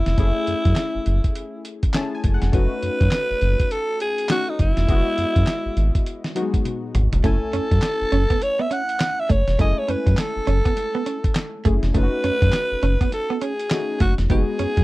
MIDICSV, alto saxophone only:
0, 0, Header, 1, 2, 480
1, 0, Start_track
1, 0, Tempo, 588235
1, 147, Time_signature, 4, 2, 24, 8
1, 12109, End_track
2, 0, Start_track
2, 0, Title_t, "Alto saxophone"
2, 0, Program_c, 0, 65
2, 0, Note_on_c, 0, 64, 97
2, 1352, Note_off_c, 0, 64, 0
2, 2078, Note_on_c, 0, 71, 115
2, 3036, Note_on_c, 0, 69, 100
2, 3048, Note_off_c, 0, 71, 0
2, 3272, Note_off_c, 0, 69, 0
2, 3276, Note_on_c, 0, 68, 87
2, 3495, Note_off_c, 0, 68, 0
2, 3520, Note_on_c, 0, 66, 100
2, 3666, Note_on_c, 0, 63, 84
2, 3679, Note_off_c, 0, 66, 0
2, 3756, Note_on_c, 0, 64, 97
2, 3769, Note_off_c, 0, 63, 0
2, 5192, Note_off_c, 0, 64, 0
2, 5917, Note_on_c, 0, 69, 102
2, 6878, Note_on_c, 0, 73, 107
2, 6890, Note_off_c, 0, 69, 0
2, 7027, Note_on_c, 0, 76, 97
2, 7039, Note_off_c, 0, 73, 0
2, 7120, Note_on_c, 0, 78, 113
2, 7132, Note_off_c, 0, 76, 0
2, 7504, Note_on_c, 0, 76, 97
2, 7517, Note_off_c, 0, 78, 0
2, 7599, Note_on_c, 0, 73, 95
2, 7611, Note_off_c, 0, 76, 0
2, 7833, Note_off_c, 0, 73, 0
2, 7839, Note_on_c, 0, 75, 94
2, 7985, Note_on_c, 0, 73, 93
2, 7997, Note_off_c, 0, 75, 0
2, 8080, Note_on_c, 0, 71, 87
2, 8092, Note_off_c, 0, 73, 0
2, 8320, Note_on_c, 0, 69, 91
2, 8332, Note_off_c, 0, 71, 0
2, 9514, Note_off_c, 0, 69, 0
2, 9758, Note_on_c, 0, 71, 121
2, 10680, Note_off_c, 0, 71, 0
2, 10718, Note_on_c, 0, 69, 98
2, 10913, Note_off_c, 0, 69, 0
2, 10913, Note_on_c, 0, 69, 67
2, 10956, Note_on_c, 0, 68, 106
2, 10968, Note_off_c, 0, 69, 0
2, 11429, Note_off_c, 0, 68, 0
2, 11434, Note_on_c, 0, 66, 84
2, 11541, Note_off_c, 0, 66, 0
2, 11677, Note_on_c, 0, 68, 101
2, 12109, Note_off_c, 0, 68, 0
2, 12109, End_track
0, 0, End_of_file